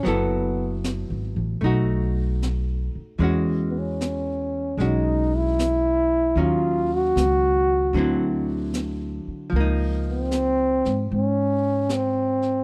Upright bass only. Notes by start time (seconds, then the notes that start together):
0.06 F#1
1.10 G#1
1.36 A1
1.62 B1
2.95 muted upright bass stroke
3.19 E2
4.77 B1
6.35 D#2
7.16 C#2
7.93 D2
9.27 muted upright bass stroke
9.52 C#2
10.85 G#2
11.11 G#2